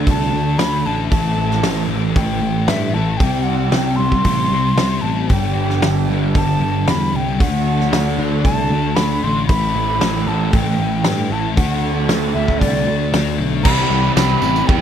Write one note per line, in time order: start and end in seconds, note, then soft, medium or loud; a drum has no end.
0.00 1.10 D3 medium
0.00 1.11 D4 medium
0.00 1.11 F#4 medium
0.00 1.11 A4 medium
0.07 0.31 C2 medium
0.07 0.59 D3 medium
0.07 0.35 A3 medium
0.07 0.33 D4 medium
0.07 0.60 A5 loud
0.07 kick loud
0.07 open hi-hat medium
0.32 0.57 D2 medium
0.32 0.61 D4 medium
0.36 0.60 A3 medium
0.58 0.84 D2 medium
0.58 1.10 D3 medium
0.58 0.87 A3 medium
0.58 0.85 D4 medium
0.58 0.88 B5 loud
0.58 snare loud
0.58 open hi-hat medium
0.86 1.11 A1 medium
0.86 1.11 A3 medium
0.86 1.11 D4 medium
0.86 1.09 A5 medium
1.09 1.36 A1 medium
1.09 3.20 A2 medium
1.09 2.15 A2 medium
1.09 3.20 E3 medium
1.09 1.92 E3 medium
1.09 1.89 A3 loud
1.09 3.20 C4 medium
1.09 3.21 E4 medium
1.09 3.21 A4 medium
1.09 1.85 A5 medium
1.09 kick loud
1.09 open hi-hat medium
1.37 1.62 A1 medium
1.51 snare soft
1.63 1.88 A1 medium
1.63 snare loud
1.63 open hi-hat medium
1.89 2.14 A1 medium
1.89 2.16 E3 medium
1.89 2.17 A3 medium
2.15 2.41 A1 medium
2.15 2.68 A2 medium
2.15 2.42 E3 medium
2.15 2.41 A3 medium
2.15 2.70 G5 medium
2.15 kick loud
2.15 open hi-hat soft
2.42 2.67 A1 medium
2.42 2.68 E3 medium
2.42 2.69 A3 medium
2.68 2.93 G2 medium
2.68 3.19 A2 medium
2.68 2.96 E3 medium
2.68 2.94 A3 medium
2.68 2.95 E5 medium
2.68 snare loud
2.68 open hi-hat medium
2.94 3.19 A1 medium
2.94 3.21 E3 medium
2.94 3.19 A3 medium
2.94 3.19 A5 medium
3.17 3.71 C2 medium
3.17 5.29 C3 medium
3.17 4.23 C3 medium
3.17 5.29 G3 medium
3.17 3.45 G5 medium
3.17 kick loud
3.17 open hi-hat medium
3.22 4.01 G3 medium
3.22 5.30 C4 medium
3.22 3.98 C4 medium
3.22 5.31 E4 medium
3.22 5.31 G4 medium
3.43 3.72 F#5 medium
3.70 3.98 C2 medium
3.70 3.98 G5 medium
3.70 snare loud
3.70 open hi-hat medium
3.96 4.24 C2 medium
3.96 4.25 C4 medium
3.96 5.03 C6 loud
4.01 4.25 G3 medium
4.12 kick medium
4.24 4.50 A1 medium
4.24 4.78 C3 medium
4.24 4.54 G3 medium
4.24 4.52 C4 medium
4.24 kick medium
4.24 open hi-hat medium
4.50 4.75 C2 medium
4.50 4.80 C4 medium
4.55 4.80 G3 medium
4.76 5.02 C2 medium
4.76 snare loud
4.76 open hi-hat medium
4.80 5.30 C3 medium
4.80 5.06 G3 medium
4.80 5.03 C4 medium
5.01 5.29 A1 medium
5.01 5.29 C4 medium
5.01 5.31 A5 medium
5.07 5.31 G3 medium
5.29 5.55 G1 medium
5.29 7.39 G2 medium
5.29 6.34 G2 medium
5.29 7.37 D3 medium
5.29 6.11 D3 medium
5.29 7.38 G3 medium
5.29 6.09 G3 medium
5.29 7.40 B3 medium
5.29 7.40 D4 medium
5.29 7.41 G4 medium
5.29 6.08 G5 medium
5.29 kick loud
5.29 open hi-hat medium
5.55 5.81 G1 medium
5.70 snare soft
5.82 6.08 G1 medium
5.82 snare loud
5.82 open hi-hat medium
6.09 6.34 G1 medium
6.09 6.35 D3 medium
6.09 6.36 G3 medium
6.35 6.60 G1 medium
6.35 6.86 G2 medium
6.35 6.62 D3 medium
6.35 6.61 G3 medium
6.35 6.90 A5 loud
6.35 kick loud
6.35 open hi-hat medium
6.60 6.86 G1 medium
6.60 6.87 D3 medium
6.60 6.88 G3 medium
6.87 7.13 E2 medium
6.87 7.38 G2 medium
6.87 7.14 D3 medium
6.87 7.12 G3 medium
6.87 7.18 B5 loud
6.87 snare loud
6.87 open hi-hat soft
7.14 7.39 C2 medium
7.14 7.39 D3 medium
7.14 7.38 G3 medium
7.14 7.42 G5 medium
7.39 7.90 D2 medium
7.39 9.49 D3 medium
7.39 8.44 D3 medium
7.39 9.50 A3 medium
7.39 8.19 A3 medium
7.39 9.50 D4 medium
7.39 8.17 D4 loud
7.39 9.50 F#4 medium
7.39 8.19 F#5 medium
7.39 kick loud
7.39 open hi-hat medium
7.80 snare soft
7.92 8.17 D2 medium
7.92 snare loud
7.92 open hi-hat medium
8.18 8.44 D2 medium
8.18 8.45 A3 medium
8.18 8.45 D4 medium
8.44 8.70 C2 medium
8.44 8.97 D3 medium
8.44 8.73 A3 medium
8.44 8.71 D4 medium
8.44 8.97 A5 loud
8.44 kick loud
8.44 open hi-hat medium
8.70 8.96 D2 medium
8.70 8.98 A3 medium
8.70 8.99 D4 medium
8.95 9.22 D2 medium
8.95 9.48 D3 medium
8.95 9.25 A3 medium
8.95 9.25 B5 loud
8.95 snare loud
8.95 open hi-hat medium
9.00 9.22 D4 medium
9.22 9.48 A1 medium
9.22 9.50 A3 medium
9.22 9.48 D4 medium
9.22 9.46 C6 loud
9.47 9.74 A1 medium
9.47 11.57 A2 medium
9.47 10.51 A2 medium
9.47 11.56 E3 medium
9.47 10.27 E3 medium
9.47 11.57 A3 medium
9.47 11.58 C4 medium
9.47 10.29 B5 loud
9.47 kick loud
9.47 open hi-hat medium
9.51 10.27 A3 loud
9.51 11.59 E4 medium
9.74 10.00 A1 medium
10.01 10.26 A1 medium
10.01 snare loud
10.01 open hi-hat soft
10.27 10.52 A1 medium
10.27 10.52 E3 medium
10.27 10.53 A3 medium
10.27 10.55 A5 medium
10.52 10.78 A1 medium
10.52 11.04 A2 medium
10.52 10.80 E3 medium
10.52 10.79 A3 medium
10.52 11.34 G5 loud
10.52 kick loud
10.52 open hi-hat medium
10.78 11.03 A1 medium
10.78 11.04 E3 medium
10.78 11.06 A3 medium
11.04 11.30 G2 medium
11.04 11.56 A2 medium
11.04 11.31 E3 medium
11.04 11.29 A3 medium
11.04 snare loud
11.04 open hi-hat medium
11.30 11.56 A1 medium
11.30 11.57 E3 medium
11.30 11.56 A3 medium
11.30 11.56 A5 medium
11.56 12.07 D2 medium
11.56 13.64 D3 medium
11.56 12.60 D3 medium
11.56 13.65 A3 medium
11.56 12.36 A3 loud
11.56 13.65 C4 medium
11.56 12.34 D4 loud
11.56 13.65 F#4 medium
11.56 12.05 F#5 medium
11.56 kick loud
11.56 open hi-hat medium
12.09 12.34 D2 medium
12.09 snare loud
12.09 open hi-hat medium
12.34 12.60 D2 medium
12.34 12.61 A3 medium
12.34 12.62 D4 medium
12.34 12.60 E5 medium
12.48 kick medium
12.59 12.86 C2 medium
12.59 13.13 D3 medium
12.59 12.88 A3 medium
12.59 13.38 D5 loud
12.59 kick medium
12.59 open hi-hat medium
12.63 12.87 D4 medium
12.87 13.12 D2 medium
12.87 13.13 A3 medium
12.87 13.14 D4 medium
13.13 13.38 D2 medium
13.13 13.64 D3 medium
13.13 13.39 A3 medium
13.13 13.37 D4 medium
13.13 snare loud
13.13 open hi-hat medium
13.38 13.64 B1 medium
13.38 13.64 A3 medium
13.38 13.63 D4 medium
13.64 13.84 C2 medium
13.64 14.81 C3 medium
13.64 14.15 C3 medium
13.64 14.16 E3 medium
13.64 13.92 G3 loud
13.64 14.43 G3 medium
13.64 13.91 C4 loud
13.64 14.41 C4 medium
13.64 13.90 E4 loud
13.64 14.13 B5 loud
13.64 kick loud
13.64 crash loud
13.64 tambourine soft
13.64 crash medium
13.78 tambourine soft
13.90 14.09 C2 medium
13.90 14.17 G3 medium
13.90 14.17 C4 medium
13.90 14.18 E4 medium
13.90 tambourine soft
14.04 tambourine soft
14.15 14.35 C2 medium
14.15 14.81 C3 medium
14.15 14.68 E3 medium
14.15 14.45 G3 loud
14.15 14.43 C4 loud
14.15 14.42 E4 loud
14.15 14.69 B5 loud
14.15 snare loud
14.15 tambourine loud
14.15 crash medium
14.31 tambourine soft
14.41 14.61 A1 medium
14.41 14.81 G3 medium
14.41 14.68 G3 medium
14.41 14.81 C4 medium
14.41 14.68 C4 medium
14.41 14.69 E4 medium
14.41 tambourine medium
14.56 tambourine medium
14.67 14.81 E2 loud
14.67 14.81 E3 medium
14.67 14.81 G3 medium
14.67 14.81 C4 medium
14.67 14.81 E4 medium
14.67 14.81 G5 loud
14.67 kick loud
14.67 crash medium